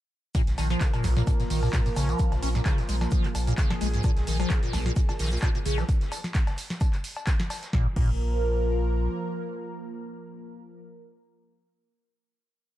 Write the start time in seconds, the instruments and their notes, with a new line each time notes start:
0.35 acid bass A#2, analog synth pad F3 A#3 A#4, kick, closed hi-hat, tambourine, shaker
0.47 sub bass A#1, snare, closed hi-hat, tambourine
0.58 sub bass A#1, acid bass D#3, snare, open hi-hat, tambourine, cowbell, shaker
0.70 acid bass F3, snare, closed hi-hat, tambourine
0.81 acid bass C#3, kick, snare, clap, closed hi-hat, tambourine, shaker
0.94 acid bass A#2, closed hi-hat, tambourine, cowbell
1.04 sub bass A#1, acid bass A#1, snare, open hi-hat, tambourine, shaker
1.17 acid bass A#2, snare, closed hi-hat, tambourine
1.27 acid bass A#2, kick, closed hi-hat, tambourine, cowbell, shaker
1.40 acid bass A#2, snare, closed hi-hat, tambourine
1.50 sub bass A#1, acid bass D#3, open hi-hat, tambourine
1.63 acid bass A#2, closed hi-hat, tambourine, cowbell
1.73 acid bass A#2, kick, snare, clap, closed hi-hat, tambourine, shaker
1.86 acid bass A#2, closed hi-hat, tambourine
1.96 sub bass A#1, acid bass C#3, open hi-hat, tambourine, cowbell, shaker
2.09 acid bass F3, closed hi-hat, tambourine
2.19 kick, closed hi-hat, tambourine, shaker
2.32 sub bass A#1, acid bass A#2, snare, closed hi-hat, tambourine, cowbell
2.42 sub bass A#1, acid bass C#4, open hi-hat, tambourine, shaker
2.55 acid bass A#2, snare, closed hi-hat, tambourine
2.65 acid bass C#3, kick, snare, clap, closed hi-hat, tambourine, cowbell, shaker
2.78 acid bass A#2, snare, closed hi-hat, tambourine
2.89 sub bass A#1, acid bass G#3, open hi-hat, tambourine, shaker
3.01 snare, closed hi-hat, tambourine, cowbell
3.11 acid bass F3, analog synth pad G#4, kick, closed hi-hat, tambourine, shaker
3.24 acid bass A#2, clap, closed hi-hat, tambourine
3.35 sub bass A#1, open hi-hat, tambourine, cowbell, shaker
3.47 acid bass A#2, closed hi-hat, tambourine
3.57 acid bass C#3, kick, snare, clap, closed hi-hat, tambourine, shaker
3.70 acid bass A#2, snare, closed hi-hat, tambourine, cowbell
3.81 sub bass A#1, acid bass G#3, snare, open hi-hat, tambourine, shaker
3.93 acid bass G#2, snare, closed hi-hat, tambourine
4.04 acid bass A#2, kick, closed hi-hat, tambourine, cowbell, shaker
4.17 sub bass A#1, snare, closed hi-hat, tambourine
4.27 sub bass A#1, acid bass D#3, snare, open hi-hat, tambourine, shaker
4.40 acid bass F3, snare, closed hi-hat, tambourine, cowbell
4.50 acid bass C#3, kick, snare, clap, closed hi-hat, tambourine, shaker
4.63 acid bass A#2, closed hi-hat, tambourine
4.73 sub bass A#1, acid bass A#1, snare, open hi-hat, tambourine, cowbell, shaker
4.86 acid bass A#2, snare, closed hi-hat, tambourine
4.96 acid bass A#2, kick, closed hi-hat, tambourine, shaker
5.09 acid bass A#2, snare, closed hi-hat, tambourine, cowbell
5.19 sub bass A#1, acid bass D#3, snare, open hi-hat, tambourine, shaker
5.25 snare, shaker
5.30 acid bass A#2, snare, closed hi-hat, tambourine, shaker
5.37 snare, shaker
5.42 acid bass A#2, kick, snare, clap, closed hi-hat, tambourine, cowbell, shaker
5.55 acid bass A#2, closed hi-hat, tambourine
5.66 sub bass A#1, acid bass C#3, open hi-hat, tambourine, shaker
5.78 acid bass F3, snare, closed hi-hat, tambourine, cowbell
5.89 kick, closed hi-hat, tambourine, shaker
6.01 snare, closed hi-hat, tambourine
6.12 open hi-hat, tambourine, cowbell, shaker
6.24 snare, closed hi-hat, tambourine
6.35 kick, snare, clap, closed hi-hat, tambourine, shaker
6.47 snare, closed hi-hat, tambourine, cowbell
6.58 open hi-hat, tambourine, shaker
6.70 snare, closed hi-hat, tambourine
6.81 kick, closed hi-hat, tambourine, cowbell, shaker
6.93 clap, closed hi-hat, tambourine
7.04 open hi-hat, tambourine
7.17 closed hi-hat, tambourine, cowbell
7.27 kick, snare, clap, closed hi-hat, tambourine, shaker
7.40 snare, closed hi-hat, tambourine
7.50 snare, open hi-hat, tambourine, cowbell, shaker
7.63 snare, closed hi-hat, tambourine
7.73 sub bass A#1, acid bass A#2, analog synth pad F3 A#3 A#4, kick, snare
7.96 sub bass A#1, acid bass A#2, kick, crash